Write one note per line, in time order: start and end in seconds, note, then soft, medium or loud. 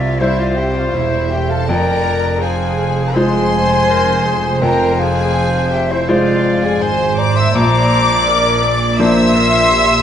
0.00 0.91 C2 medium
0.00 1.64 C2 medium
0.00 0.91 C3 medium
0.00 0.20 F4 medium
0.00 0.21 F4 medium
0.00 0.22 D5 medium
0.00 0.21 E5 medium
0.00 0.21 F5 medium
0.19 1.65 G3 soft
0.19 0.38 E4 medium
0.19 1.65 E4 soft
0.19 1.67 C5 medium
0.19 0.41 C5 medium
0.19 1.65 C5 soft
0.19 0.39 E5 medium
0.38 0.57 F4 medium
0.38 0.59 D5 medium
0.38 0.58 F5 medium
0.55 0.75 G4 medium
0.55 0.76 G4 medium
0.55 0.77 E5 medium
0.59 0.77 G5 medium
0.75 0.94 F4 medium
0.75 0.95 F4 medium
0.75 0.95 D5 medium
0.75 0.96 F5 medium
0.94 1.67 E1 medium
0.94 1.67 E2 medium
0.94 1.31 E4 medium
0.94 1.32 C5 medium
0.94 1.32 E5 medium
1.30 1.49 G4 medium
1.30 1.50 G4 medium
1.30 1.51 E5 medium
1.30 1.51 G5 medium
1.49 1.68 A4 medium
1.49 1.68 F5 medium
1.53 1.70 A5 medium
1.67 6.81 F1 medium
1.67 6.82 F2 medium
1.67 4.58 F2 medium
1.67 2.40 A#4 medium
1.67 2.42 A#4 medium
1.67 2.43 D5 medium
1.67 2.15 G5 medium
1.67 2.43 A#5 loud
2.41 3.15 G#4 medium
2.41 3.16 G#4 medium
2.41 3.16 C5 medium
2.41 3.17 F5 medium
2.41 3.16 G#5 medium
3.15 4.58 G#3 medium
3.15 4.58 F4 medium
3.15 3.63 G#4 medium
3.15 4.62 C5 medium
3.15 4.63 C5 medium
3.15 4.59 C5 medium
3.15 4.61 G#5 loud
3.15 4.62 C6 loud
3.89 4.23 A#4 medium
4.25 4.63 G#4 medium
4.62 7.51 F2 medium
4.62 4.99 A#4 medium
4.62 6.10 C5 medium
4.62 5.01 G5 medium
4.62 4.98 A#5 medium
4.99 5.71 G#4 medium
4.99 5.72 G#4 medium
4.99 5.74 F5 medium
4.99 5.72 G#5 loud
5.71 5.90 G4 medium
5.71 5.91 G4 medium
5.71 5.93 E5 medium
5.71 5.91 G5 medium
5.91 6.09 E4 medium
5.91 6.08 C5 medium
5.91 6.09 E5 medium
6.08 7.51 G#3 medium
6.08 6.63 F4 medium
6.08 7.51 F4 soft
6.08 6.63 F4 medium
6.08 6.66 C5 medium
6.08 7.51 C5 medium
6.08 6.84 D5 medium
6.08 6.63 F5 medium
6.64 6.82 G#4 medium
6.64 6.83 F5 medium
6.64 6.82 G#5 medium
6.81 7.53 G#1 medium
6.81 7.53 G#2 medium
6.81 7.18 C5 medium
6.81 8.30 C5 medium
6.81 7.19 C5 medium
6.81 7.20 G#5 medium
6.81 7.18 C6 medium
7.17 7.36 D5 medium
7.17 7.38 D5 medium
7.17 7.37 A#5 medium
7.17 7.35 D6 loud
7.36 7.54 E5 medium
7.36 7.56 E5 medium
7.36 7.53 C6 medium
7.36 7.55 E6 loud
7.53 10.02 A#1 medium
7.53 10.02 A#2 medium
7.53 8.96 D5 medium
7.53 9.00 D5 loud
7.53 8.69 A#5 loud
7.53 8.99 D6 loud
8.28 8.65 A#4 medium
8.63 8.99 D5 medium
8.98 10.02 F3 medium
8.98 10.02 A#3 medium
8.98 10.02 D4 medium
8.98 9.37 C5 medium
8.98 10.02 E5 loud
8.98 10.02 C6 loud
8.98 10.02 E6 loud
9.36 9.73 A#4 medium
9.72 10.02 G4 medium